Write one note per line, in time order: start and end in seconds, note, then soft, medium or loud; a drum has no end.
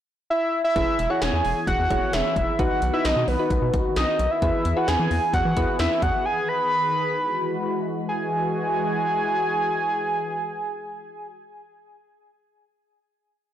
0.30 0.62 E5 loud
0.64 1.12 E5 loud
0.76 0.84 E1 loud
0.76 2.57 E3 medium
0.76 4.39 B3 medium
0.76 0.97 E4 medium
0.76 0.97 G#4 medium
0.76 2.57 G#4 medium
0.76 0.97 B4 loud
0.76 kick loud
0.76 closed hi-hat medium
0.99 1.07 E1 loud
0.99 closed hi-hat medium
1.10 1.60 E4 medium
1.10 1.60 G#4 medium
1.10 1.60 C#5 medium
1.10 1.23 F#5 loud
1.22 1.30 E1 loud
1.22 1.67 G#5 loud
1.22 snare loud
1.22 closed hi-hat medium
1.33 1.42 E2 loud
1.45 1.53 E1 loud
1.45 open hi-hat soft
1.67 1.76 E1 loud
1.67 2.15 F#5 loud
1.67 kick loud
1.67 closed hi-hat medium
1.79 1.88 E2 loud
1.90 1.99 E1 loud
1.90 2.33 E4 medium
1.90 2.33 G#4 medium
1.90 2.33 C#5 medium
1.90 kick loud
1.90 closed hi-hat medium
2.13 2.22 E1 loud
2.13 2.60 E5 loud
2.13 snare loud
2.13 closed hi-hat medium
2.36 2.45 E1 loud
2.36 kick medium
2.36 closed hi-hat medium
2.59 2.68 B1 loud
2.59 4.40 D#3 medium
2.59 2.81 D#4 medium
2.59 4.40 F#4 medium
2.59 2.81 F#4 medium
2.59 2.81 B4 medium
2.59 2.93 F#5 loud
2.59 kick loud
2.59 closed hi-hat medium
2.82 2.91 B1 loud
2.82 closed hi-hat medium
2.94 3.22 D#4 medium
2.94 3.22 F#4 medium
2.94 3.22 B4 medium
2.94 3.07 E5 medium
3.05 3.13 B1 loud
3.05 3.29 D#5 loud
3.05 snare loud
3.05 closed hi-hat medium
3.16 3.25 B2 loud
3.28 3.36 B1 loud
3.28 3.74 B4 medium
3.28 open hi-hat soft
3.39 3.97 D#4 medium
3.39 3.97 F#4 medium
3.39 3.96 B4 medium
3.50 3.59 B1 loud
3.50 kick loud
3.50 closed hi-hat medium
3.62 3.70 B2 loud
3.74 3.82 B1 loud
3.74 kick loud
3.74 closed hi-hat medium
3.96 4.05 B1 loud
3.96 4.32 D#5 medium
3.96 snare loud
3.96 closed hi-hat medium
4.19 4.28 B1 loud
4.19 closed hi-hat medium
4.31 4.78 E5 medium
4.42 4.51 E2 loud
4.42 6.24 E3 medium
4.42 7.14 B3 medium
4.42 4.64 E4 medium
4.42 7.14 G#4 medium
4.42 4.64 G#4 medium
4.42 4.64 B4 medium
4.42 kick loud
4.42 closed hi-hat medium
4.65 4.74 E2 loud
4.65 closed hi-hat medium
4.77 5.27 E4 medium
4.77 5.27 G#4 medium
4.77 5.27 B4 medium
4.77 4.90 F#5 medium
4.88 4.97 E2 loud
4.88 5.33 G#5 loud
4.88 snare loud
4.88 closed hi-hat medium
4.99 5.08 E3 loud
5.11 5.19 E2 loud
5.11 open hi-hat soft
5.33 5.42 E2 loud
5.33 5.76 F#5 loud
5.33 kick loud
5.33 closed hi-hat medium
5.45 5.54 E3 loud
5.57 5.65 E2 loud
5.57 6.00 E4 medium
5.57 6.00 G#4 medium
5.57 6.00 B4 medium
5.57 kick medium
5.57 closed hi-hat medium
5.79 5.88 E2 loud
5.79 6.04 E5 medium
5.79 snare loud
5.79 closed hi-hat medium
6.02 6.11 E2 loud
6.02 6.27 F#5 loud
6.02 kick medium
6.02 closed hi-hat medium
6.25 7.16 D#3 medium
6.25 6.50 G#5 loud
6.48 7.86 B5 loud
7.17 8.08 E3 medium
7.17 8.07 G#3 medium
7.17 8.07 F#4 medium
8.09 11.28 E3 medium
8.09 11.28 G#3 medium
8.09 11.28 F#4 medium
8.09 11.28 G#5 medium